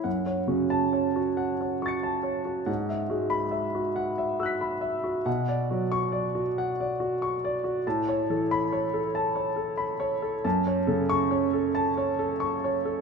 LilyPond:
<<
  \new Staff \with { instrumentName = "Grand piano" } { \time 6/8 \key fis \minor \tempo 4. = 46 << { r8. a''8 r8. <cis''' a''' cis''''>4 | r8. b''8 r8. <e''' fis''' b'''>4 | r8. cis'''8 r4. r16 | r8. b''8 r4. r16 |
r8. cis'''8 r4. r16 | } \\ { fis''16 cis''16 fis'8 cis''16 fis'16 fis''16 cis''16 fis'16 a''16 cis''16 fis'16 | fis''16 e''16 fis'8 e''16 fis'16 fis''16 e''16 fis'16 b''16 e''16 fis'16 | fis''16 d''16 fis'8 d''16 fis'16 fis''16 d''16 fis'16 cis'''16 d''16 fis'16 | a''16 cis''16 a'8 cis''16 a'16 a''16 cis''16 a'16 b''16 cis''16 a'16 |
a''16 cis''16 a'8 cis''16 a'16 a''16 cis''16 a'16 cis'''16 cis''16 a'16 | } >> }
  \new Staff \with { instrumentName = "Grand piano" } { \clef bass \time 6/8 \key fis \minor fis,8 cis4 r4. | gis,8 gis4 r4. | b,8 fis4 r4. | a,8 e4 r4. |
fis,8 cis4 r4. | }
>>